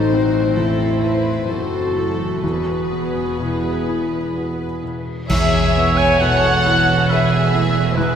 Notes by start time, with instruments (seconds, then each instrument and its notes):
Already playing: double bass section A1, felt piano A1, cello section A2, harp A2, viola section C4 A4, french horn section D#4, clarinet D#4, violin section C5
0.12 felt piano C4, viola section F#4
0.55 felt piano E2, french horn section E4, harp E4, viola section E4, clarinet E4, violin section A4 C5
1.01 felt piano E4, harp A4, violin section B4
1.48 double bass section F#1, cello section F#2, viola section C4 A4, harp C4, french horn section F#4, felt piano F#4, clarinet F#4, violin section A4 C5
1.95 harp E3, viola section A3, felt piano E4, violin section A4
2.42 double bass section E1, cello section E2, harp E2, felt piano E2, viola section B3 G#4, french horn section F#4, clarinet F#4, violin section B4
2.91 felt piano B3, harp B3
3.38 felt piano B2, french horn section E4, clarinet E4, harp E4
3.88 felt piano E4, harp G#5
4.36 harp B3, felt piano F#4
4.83 harp B2, felt piano E4
5.29 double bass section E1, cello section E2, felt piano E2, harp E2, violin section G#4 E5, viola section C#5, oboe E5, concert bass drum, crash
5.76 harp B3, felt piano B3
5.97 violin section B4 G#5, oboe G#5
6.20 felt piano B2, harp E4, violin section A4 F#5, oboe F#5
6.66 felt piano E4, harp B4
7.10 harp B3, felt piano F#4, violin section G#4 E5, viola section B4, oboe E5
7.53 harp B2, viola section A3, felt piano E4
7.96 harp E2, felt piano E2, violin section E4 B4, viola section G#4, oboe B4